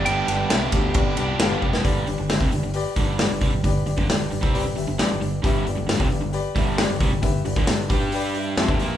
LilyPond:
<<
  \new Staff \with { instrumentName = "Electric slide guitar" } { \time 4/4 \key g \mixolydian \tempo 4 = 134 g''2. r4 | r1 | r1 | r1 |
r1 | }
  \new Staff \with { instrumentName = "Upright piano" } { \time 4/4 \key g \mixolydian <d' g' b' d''>8 <d' g' b' d''>8 <d' g' b' e''>8 <d' g' b' f''>8 <d' g' b' d''>8 <d' g' b' d''>8 <d' g' b' f''>8 <d' g' b' d''>8 | <g' b' d''>8 <g' b' d''>8 <g' b' e''>8 <g' b' d''>8 <g' b' d''>8 <b' d''>8 <g' b' d''>8 <g' b' d''>8 | <g' b' d''>8 <g' b' d''>8 <g' b' d''>8 <g' b' d''>8 <g' b' d''>8 <g' b' e''>8 <g' b' d''>8 <g' b' d''>8 | <g' b' e''>8 <g' b' d''>8 <g' b' f''>8 <g' b' d''>8 <g' b' d''>8 <g' b' e''>8 <g' b' d''>8 g'8 |
<g' b' e''>8 <g' b' d''>8 <g' b' d''>8 <g' b' d''>8 <g' b' d''>8 <g' b' e''>8 <g' b' e''>8 <g' b' e''>8 | }
  \new Staff \with { instrumentName = "Overdriven electric guitar" } { \clef bass \time 4/4 \key g \mixolydian <g, d g b d' g'>8 <g b d' g'>8 <g, d g b d' g'>4. <g b d' g'>8 <g b d' g'>8 <g b d' g'>8 | <g, d g>8 <g, d>16 <g, d>16 <g, d>16 <f, c>16 <g, d>16 <g, d>8 r16 <g, d g>8. <g, d>16 <c g>16 <g, d>16 | <g, d>8 <g, d>16 <g, d>16 <g, d>8 <g, d>16 <c g c'>8 <g, d>16 <g, d>16 <g, d>16 <bes, f>16 <g, d>16 <g, d>8 | <g, d g>8 <g, d>16 <g, d>16 <g, d>16 <f, c>16 <g, d>16 <g, d>8 r16 <g, d g>8. <g, d>16 <c g>16 <g, d>16 |
<g, d>8 <g, d>16 <g, d>16 <g, d>8 <g d' g'>4. <f c'>16 <g, d>16 <bes, f bes>8 | }
  \new Staff \with { instrumentName = "Overdriven electric guitar" } { \clef bass \time 4/4 \key g \mixolydian <g, d g b d'>2. <g, d g b d'>8 r8 | r1 | r1 | <g, d g>8 <g, d>16 <g, d>16 <g, d>16 <f, c>16 <g, d>16 <g, d>8 r16 <g, d g>8. <g, d>16 <c g>16 <g, d>16 |
<g, d>8 <g, d>16 <g, d>16 <g, d>8 <g d' g'>4. <f c'>16 <g, d>16 <bes, f bes>8 | }
  \new Staff \with { instrumentName = "Fingered electric bass" } { \clef bass \time 4/4 \key g \mixolydian g,,8 g,,8 c,8 d,8 g,,8 c,8 g,,8 f,,8 | g,,8 g,,16 g,,16 g,,16 f,,16 g,,16 g,,8 r16 g,,8. g,,16 c,16 g,,16 | g,,8 g,,16 g,,16 g,,8 g,,16 c,8 g,,16 g,,16 g,,16 bes,,16 g,,16 g,,8 | g,,8 g,,16 g,,16 g,,16 f,,16 g,,16 g,,8 r16 g,,8. g,,16 c,16 g,,16 |
g,,8 g,,16 g,,16 g,,8 g,4. f,16 g,,16 bes,,8 | }
  \new DrumStaff \with { instrumentName = "Drums" } \drummode { \time 4/4 cymr8 <cymr sn>8 <cymr sn>8 <bd cymr>8 <bd cymr>8 cymr8 <cymr sn>8 bd16 sn16 | <hho bd>8 hho8 <hho sn>16 bd16 hho8 hho8 <hho bd>8 <hho sn>8 <hho bd>8 | <hho bd>8 hho16 bd16 <hho sn>8 hho16 bd16 hho8 hho8 <hho sn>8 hho8 | <hho bd>8 hho8 <hho sn>16 bd16 hho8 hho8 <hho bd>8 <hho sn>8 <hho bd>8 |
<hho bd>8 hho16 bd16 <hho sn>8 <hho bd>8 hho8 hho8 <hho sn>16 bd16 hho8 | }
>>